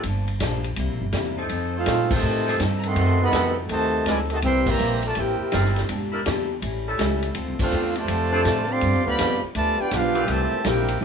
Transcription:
0.03 upright bass G1, steel-string acoustic guitar G2 F3 A#3 D4, ride
0.28 ride
0.39 upright bass A#1, steel-string acoustic guitar G2 F3 A#3 D4, snare, hi-hat pedal, ride
0.64 ride
0.76 upright bass C2, steel-string acoustic guitar C3 G3 A#3 E4, ride
0.89 upright bass A#1
1.01 upright bass G1
1.12 upright bass E2, steel-string acoustic guitar C3 G3 A#3 E4, snare, hi-hat pedal, ride
1.38 saxophone section F3 C4 D#4 A4
1.49 upright bass F2, steel-string acoustic guitar F3 C4 D#4, ride
1.53 steel-string acoustic guitar A4
1.77 trombone section A3 C4 F4, trumpet section D#4 A4 C5 F5
1.86 upright bass A#2, steel-string acoustic guitar F3 C4 D#4 A4, snare, hi-hat pedal, ride
2.09 trombone section C3 D#3 A3, saxophone section F3 C4 D#4 A4, kick, crash
2.14 trumpet section F4 C5 D#5 A5
2.22 upright bass A2, steel-string acoustic guitar F3 C4 D#4 A4
2.46 saxophone section F3 C4 D#4 A4, snare
2.59 upright bass G2, steel-string acoustic guitar F3 C4 D#4 A4, snare, hi-hat pedal, ride
2.76 trumpet section A#5
2.83 trombone section D#3 A3 C4, trumpet section A4 D#5 F#5 C6, ride
2.95 upright bass F#2, saxophone section C3 D#4 F#4 A4, steel-string acoustic guitar F#3 C4 D#4 A4, ride
3.22 trombone section C3 D#3 B3, trumpet section A4 D#5 F#5 B5
3.31 upright bass F2, steel-string acoustic guitar F#3 C4 D#4 A4, snare, hi-hat pedal, ride
3.68 upright bass D#2, trombone section C3 D#3 A3, steel-string acoustic guitar F#3 C4 D#4 A4, trumpet section F#4 C5 D#5 A5, ride
4.04 upright bass D2, steel-string acoustic guitar F#3 C4 D#4 A4, trombone section G#3, trumpet section F4 B4 D5 G#5, snare, hi-hat pedal, ride
4.30 trombone section C3 D#3 A3, trumpet section F#4 C5 D#5 A5, ride
4.42 upright bass C2, steel-string acoustic guitar C3 A#3 E4 G4, trombone section E3 G3 C4, trumpet section A#4 E5 G5 C6, ride
4.66 trombone section E3 G3 A#3, trumpet section G4 C5 E5 A#5, kick, crash
4.78 upright bass A#1, steel-string acoustic guitar C3 A#3 E4 G4, hi-hat pedal
5.02 trombone section A3, trumpet section F4 A#4 D5 A5, ride
5.15 upright bass A1, steel-string acoustic guitar C3 A#3 E4 G4, trombone section A#3 E4 G4, trumpet section E4 A#4 C5 G5, ride
5.41 muted upright bass stroke
5.51 upright bass G1, steel-string acoustic guitar C3 A#3 E4 G4, saxophone section G3 C4 E4 A#4, snare, hi-hat pedal, ride
5.65 snare
5.76 snare, ride
5.87 upright bass E1, steel-string acoustic guitar E3 A#3 D4 G4, ride
6.12 saxophone section G3 D4 E4 A#4
6.25 upright bass E2, steel-string acoustic guitar E3 A#3 D4 G4, snare, hi-hat pedal, ride
6.60 upright bass A1, steel-string acoustic guitar A2 G3 C#4 E4, ride
6.87 saxophone section G3 C#4 E4 A4
6.97 upright bass C#2, steel-string acoustic guitar A2 G3 C#4 E4, snare, hi-hat pedal, ride
7.22 ride
7.33 upright bass D2, steel-string acoustic guitar D3 A3 C4 F4, ride
7.48 upright bass C2
7.59 upright bass A1, trombone section A3 C4 F4, trumpet section D4 A4 C5 F5, kick, crash
7.71 upright bass E2, steel-string acoustic guitar D3 A3 C4 F4, hi-hat pedal
7.95 trombone section C3 F3 A3, trumpet section F4 C5 D5 A5, ride
8.07 upright bass F2, steel-string acoustic guitar D3 A3 C4 F4, ride
8.32 saxophone section F3 C4 D4 A4
8.45 upright bass A2, steel-string acoustic guitar D3 A3 C4 F4, snare, hi-hat pedal, ride
8.69 trombone section D3 F3 C4, trumpet section G4 D5 F5 C6
8.81 steel-string acoustic guitar G2 F3 B3 D4, upright bass G2, ride
8.94 upright bass F2
9.05 upright bass D2, trombone section D3 F3 B3, trumpet section G4 D5 F5 B5
9.18 upright bass F2, steel-string acoustic guitar G2 F3 B3 D4, snare, hi-hat pedal, ride
9.43 muted upright bass stroke
9.54 upright bass D2, steel-string acoustic guitar G2 F3 B3 D4, trombone section A3, trumpet section F4 B4 D5 A5, ride
9.79 trombone section B3 D4 G4, trumpet section F4 B4 D5 G5, muted upright bass stroke
9.91 upright bass B1, steel-string acoustic guitar G2 F3 B3 D4, trombone section B3 D4 F4, trumpet section D4 G4 B4 F5, snare, hi-hat pedal, ride
10.14 saxophone section A#2 E3 C4 G4, ride
10.27 upright bass C2, trombone section A#2 E3 A3, steel-string acoustic guitar C3 G3 A#3 E4, trumpet section G4 C5 E5 A5, ride
10.52 muted upright bass stroke
10.63 upright bass A#1, steel-string acoustic guitar C3 G3 A#3, trombone section A#3 E4 G4, trumpet section E4 A#4 C5 G5, snare, hi-hat pedal, ride
10.67 steel-string acoustic guitar E4
10.88 ride
11.00 upright bass A1, steel-string acoustic guitar A2, trombone section G3 C#4 E4, trumpet section G4 E5

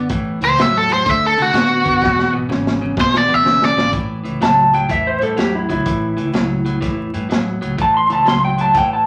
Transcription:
0.09 upright bass A1, clean electric guitar A2 E3, kick, closed hi-hat
0.41 upright bass C#2, clean electric guitar A2 E3, overdriven electric guitar C5, closed hi-hat
0.57 upright bass E2, clean electric guitar A2 F#3, snare, closed hi-hat
0.62 overdriven electric guitar E5
0.78 overdriven electric guitar A4
0.89 clean electric guitar A2 F#3, closed hi-hat
0.93 overdriven electric guitar C5
1.05 upright bass D2, clean electric guitar D3 A3, kick, snare, closed hi-hat
1.11 overdriven electric guitar E5
1.27 overdriven electric guitar A4
1.37 upright bass C3, clean electric guitar D3 A3, closed hi-hat
1.42 overdriven electric guitar F#4
1.53 upright bass A2, clean electric guitar D3 B3, snare, closed hi-hat
1.84 upright bass F#2, clean electric guitar D3 B3, kick, closed hi-hat
2.01 upright bass E1, clean electric guitar E2 B2, kick, snare
2.19 snare
2.32 upright bass G#1, clean electric guitar E2 B2
2.49 upright bass G#1, clean electric guitar E2 C#3, snare
2.67 snare
2.81 clean electric guitar E2 C#3
2.97 upright bass B1, clean electric guitar E2 B2, kick, snare
3.01 overdriven electric guitar C5
3.14 overdriven electric guitar D5, snare
3.28 upright bass D2, clean electric guitar E2 B2
3.34 overdriven electric guitar E5
3.44 upright bass B1, clean electric guitar E2 C#3, snare
3.62 overdriven electric guitar D5, snare
3.77 upright bass G#1, clean electric guitar E2 C#3, snare
3.93 upright bass A1, clean electric guitar A2 E3, kick, closed hi-hat
4.24 upright bass C#2, clean electric guitar A2 E3, closed hi-hat
4.41 upright bass C#2, clean electric guitar A2 F#3, electric slide guitar A5, snare, closed hi-hat
4.74 clean electric guitar A2 F#3, electric slide guitar G5, closed hi-hat
4.89 upright bass E2, clean electric guitar A2 E3, electric slide guitar E5, kick, closed hi-hat
5.07 electric slide guitar C5
5.21 upright bass G2, clean electric guitar A2 E3, electric slide guitar A4, closed hi-hat
5.37 upright bass E2, clean electric guitar A2 F#3, electric slide guitar G4, snare, closed hi-hat
5.55 electric slide guitar E4
5.69 upright bass C#2, clean electric guitar A2 F#3, electric slide guitar E4, kick, closed hi-hat
5.85 upright bass A1, clean electric guitar A2 E3, kick, closed hi-hat
6.17 upright bass C#2, clean electric guitar A2 E3, closed hi-hat
6.33 upright bass C#2, clean electric guitar A2 F#3, snare, closed hi-hat
6.65 clean electric guitar A2 F#3, closed hi-hat
6.81 upright bass E2, clean electric guitar A2 E3, kick, snare, closed hi-hat
7.14 upright bass G2, clean electric guitar A2 E3, closed hi-hat
7.29 upright bass E2, clean electric guitar A2 F#3, snare, closed hi-hat
7.61 upright bass C#2, clean electric guitar A2 F#3, closed hi-hat
7.77 upright bass A1, clean electric guitar A2 E3, kick, closed hi-hat
7.82 electric slide guitar A5
7.97 electric slide guitar C6
8.10 upright bass C#2, clean electric guitar A2 E3, electric slide guitar A5, closed hi-hat
8.25 upright bass C#2, clean electric guitar A2 F#3, electric slide guitar C6, snare, closed hi-hat
8.45 electric slide guitar G5
8.58 clean electric guitar A2 F#3, electric slide guitar A5, closed hi-hat
8.74 upright bass E2, clean electric guitar A2 E3, electric slide guitar G5, kick, snare, closed hi-hat
8.93 electric slide guitar A5

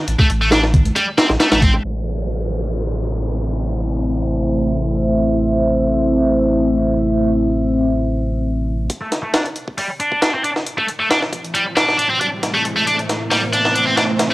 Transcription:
0.08 sub bass A1, closed hi-hat
0.18 distorted electric guitar A3, kick, high bongo, high conga
0.30 sub bass A1, closed hi-hat
0.41 distorted electric guitar A3
0.51 distorted electric guitar D4, snare, closed hi-hat, high bongo
0.63 snare
0.74 kick, closed hi-hat, low conga
0.85 closed hi-hat, high conga
0.96 distorted electric guitar G3, closed hi-hat, high bongo
1.18 distorted electric guitar C4, snare, closed hi-hat
1.29 sub bass A1, snare, high bongo
1.40 distorted electric guitar A3, snare, closed hi-hat
1.52 sub bass A1, distorted electric guitar A3, snare, closed hi-hat, high conga
1.61 distorted electric guitar C4, kick, closed hi-hat, high conga
1.74 high bongo
1.83 sub bass A1, analog synth pad A3 C4 E4 C5 E5, downlifter
8.90 analog synth pad A3 C4 E4 C5 E5, kick, closed hi-hat, riser
9.02 distorted electric guitar A3
9.12 snare, closed hi-hat
9.23 distorted electric guitar A3
9.34 distorted electric guitar D4, snare, closed hi-hat
9.46 closed hi-hat
9.56 closed hi-hat
9.68 kick
9.78 distorted electric guitar G3, open hi-hat
10.00 distorted electric guitar D4, closed hi-hat
10.12 kick
10.22 distorted electric guitar D4, snare, closed hi-hat
10.34 distorted electric guitar C4
10.44 distorted electric guitar D4, closed hi-hat
10.56 snare
10.66 closed hi-hat
10.78 distorted electric guitar A3, kick
10.88 closed hi-hat
11.00 distorted electric guitar A3
11.11 distorted electric guitar D4, snare, closed hi-hat
11.22 snare
11.33 kick, closed hi-hat
11.45 closed hi-hat
11.55 distorted electric guitar G3, closed hi-hat
11.76 distorted electric guitar D4, snare, closed hi-hat
11.89 snare
11.98 distorted electric guitar D4, closed hi-hat
12.10 distorted electric guitar C4
12.21 distorted electric guitar D4, kick, closed hi-hat
12.43 snare, closed hi-hat
12.54 distorted electric guitar A3
12.65 closed hi-hat
12.76 distorted electric guitar A3
12.87 distorted electric guitar D4, closed hi-hat
12.99 closed hi-hat
13.09 snare, closed hi-hat
13.31 distorted electric guitar G3, snare, open hi-hat
13.53 distorted electric guitar D4, closed hi-hat
13.65 snare
13.75 distorted electric guitar D4, closed hi-hat
13.87 distorted electric guitar C4
13.97 distorted electric guitar D4, snare, closed hi-hat
14.19 snare, closed hi-hat

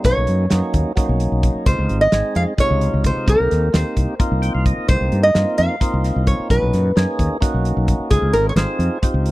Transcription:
0.03 fretless electric bass B1, tonewheel organ F#3 A#3 C#4 D#4, nylon-string guitar C#5, kick, closed hi-hat
0.17 fretless electric bass B1
0.27 fretless electric bass F#2, closed hi-hat
0.50 fretless electric bass F#2, tonewheel organ F#3 A#3 C#4 D#4, snare, closed hi-hat
0.74 fretless electric bass D#2, kick, closed hi-hat
0.96 tonewheel organ F#3 A#3 C#4 D#4, muted fretless electric bass stroke, kick, snare, closed hi-hat
1.09 fretless electric bass B1
1.20 closed hi-hat
1.32 fretless electric bass B1
1.43 kick, closed hi-hat
1.55 muted fretless electric bass stroke
1.66 fretless electric bass C#2, tonewheel organ G#3 C4 D#4 F4, nylon-string guitar C5, kick, closed hi-hat
1.79 fretless electric bass C#2
1.89 fretless electric bass G#1, closed hi-hat
2.01 nylon-string guitar D#5
2.12 fretless electric bass G#1, tonewheel organ G#3 C4 D#4 G#4, snare, closed hi-hat
2.35 fretless electric bass F2, nylon-string guitar F5, closed hi-hat
2.57 tonewheel organ C3 G#3 D#4 F4, nylon-string guitar C#5, muted fretless electric bass stroke, kick, closed hi-hat
2.71 fretless electric bass C#2
2.81 closed hi-hat
2.94 fretless electric bass C#2
3.04 nylon-string guitar C5, kick, closed hi-hat
3.17 muted fretless electric bass stroke
3.27 fretless electric bass C2, tonewheel organ A#3 C4 D#4 G4, nylon-string guitar A#4, kick, closed hi-hat
3.40 fretless electric bass C2
3.51 fretless electric bass D#2, snare, closed hi-hat
3.73 fretless electric bass D#2, tonewheel organ A#3 C4 D#4 G4, nylon-string guitar C5, snare, closed hi-hat
3.97 fretless electric bass C2, kick, closed hi-hat
4.19 tonewheel organ A#3 C4 D#4 F4, muted fretless electric bass stroke, kick, closed hi-hat
4.32 fretless electric bass C2
4.42 tonewheel organ G5, closed hi-hat
4.54 fretless electric bass C2, tonewheel organ F5
4.66 tonewheel organ D#5, kick, closed hi-hat
4.78 muted fretless electric bass stroke
4.88 fretless electric bass C2, tonewheel organ A#3 C4 D#4 G4, nylon-string guitar C5, kick, closed hi-hat
5.01 fretless electric bass C2
5.12 fretless electric bass G2, closed hi-hat
5.23 nylon-string guitar D#5
5.34 fretless electric bass G2, tonewheel organ A#3 C4 D#4 F4, snare, closed hi-hat
5.58 fretless electric bass F2, nylon-string guitar F5, closed hi-hat
5.81 tonewheel organ A#3 C4 D#4 F4, muted fretless electric bass stroke, kick, snare, closed hi-hat
5.94 fretless electric bass C2
6.04 snare, closed hi-hat
6.16 fretless electric bass C2
6.27 nylon-string guitar C#5, kick, closed hi-hat
6.40 muted fretless electric bass stroke
6.50 fretless electric bass B1, tonewheel organ A#2 C#4 D#4 F#4, nylon-string guitar B4, kick, closed hi-hat
6.62 fretless electric bass B1
6.73 fretless electric bass F#2, snare, closed hi-hat
6.96 fretless electric bass F#2, tonewheel organ A#3 C#4 D#4 G#4, snare, closed hi-hat
7.19 fretless electric bass D#2, kick, closed hi-hat
7.41 tonewheel organ A#3 C#4 D#4 F#4, muted fretless electric bass stroke, kick, snare, closed hi-hat
7.54 fretless electric bass B1
7.65 closed hi-hat
7.77 fretless electric bass B1
7.88 kick, closed hi-hat
8.00 muted fretless electric bass stroke
8.10 fretless electric bass C#2, tonewheel organ C4 D#4 F4 G#4, nylon-string guitar G#4, kick, closed hi-hat
8.22 fretless electric bass C#2
8.33 fretless electric bass G#1, nylon-string guitar A#4, closed hi-hat
8.49 nylon-string guitar C#5
8.56 fretless electric bass G#1, tonewheel organ C4 D#4 F4 G#4, nylon-string guitar C5, snare, closed hi-hat
8.79 fretless electric bass F2, closed hi-hat
9.02 tonewheel organ C4 D#4 F4 G4, muted fretless electric bass stroke, kick, closed hi-hat
9.14 fretless electric bass C#2
9.26 closed hi-hat

